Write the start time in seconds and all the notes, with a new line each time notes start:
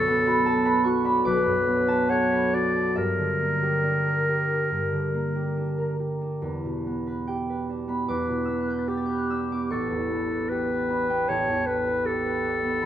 Already playing: B1 F#2 C#4 D4 F#4 A4 C#5 F#5 A5 C#6
0.07 B3
0.27 F#4 B5
0.46 A4 A5
0.65 B4 B5
0.84 F#4 C#6
1.04 D4 B5
1.25 B1 B4 D6
1.47 F#2
1.67 B3
1.87 F#4 A5
2.09 A4 C#5 F#5
2.31 B4
2.53 F#4 D5
2.75 D4
2.95 G2 A#4 E5
3.18 D3
3.40 A#3
3.62 G4
3.83 D4
4.06 A#4
4.28 G4
4.50 D4
4.71 G2
4.92 D3
5.14 A#3
5.35 G4
5.57 D4
5.78 A#4
6.00 G4
6.21 D4
6.42 E2
6.65 B2
6.87 B3
7.07 B4
7.27 G4 G5
7.50 B4
7.70 D4
7.88 B3 B5
8.07 E2 B4 D6
8.29 B2
8.45 E6
8.49 B3
8.60 F#6
8.68 B4 G6
8.78 A6
8.88 G4 B6
8.97 A6
9.06 B4 G6
9.18 F#6
9.30 D4 E6
9.52 B3 D6
9.70 A1 A4 C#6
9.91 E2
10.11 B3
10.30 B4
10.49 G4 B4
10.70 B4
10.89 D4 B5
11.09 B3 G5
11.28 A1 C#5 A5
11.48 E2
11.66 B3 B4
11.87 B4
12.05 G4 A4
12.25 B4
12.44 D4
12.63 B3
12.82 B5